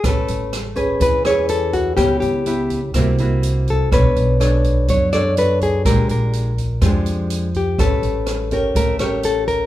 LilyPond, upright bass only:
\new Staff \with { instrumentName = "Upright bass" } { \clef bass \time 4/4 \key b \dorian \tempo 4 = 124 a,,16 r16 a,,4. e,2 | cis,16 r16 cis,4. c,2 | b,,16 r16 b,,4. fis,2 | bes,,16 r16 bes,,4. f,2 |
a,,16 r16 a,,4. a,,2 | }